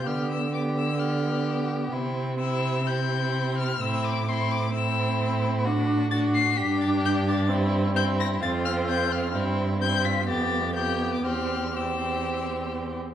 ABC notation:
X:1
M:4/4
L:1/16
Q:1/4=128
K:C
V:1 name="Violin"
f'2 e'2 d'2 e'2 f'6 z2 | z4 e'4 g'6 f'2 | e'2 d'2 c'2 d'2 e'6 z2 | z4 a'2 c''2 b'2 a'2 g'2 a'2 |
z4 g'2 _b'2 a'2 f'2 g'2 f'2 | z4 g'2 b'2 a'4 g'3 d' | f'4 e'8 z4 |]
V:2 name="Violin"
G4 G4 G8 | E4 E4 E8 | E4 E4 E8 | ^F4 F4 G8 |
E4 E4 F8 | E4 E2 F2 G4 G4 | G4 G8- G2 z2 |]
V:3 name="Viola"
B,4 B,4 B,8 | C4 C4 C8 | C4 C4 C8 | D4 D4 D8 |
C4 C4 C8 | C4 C4 B,4 B,4 | C4 C8- C2 z2 |]
V:4 name="Cello" clef=bass
D,16 | C,16 | A,,16- | A,,8 G,,8- |
G,,8 F,,8 | G,,8 F,,8 | E,,12- E,,2 z2 |]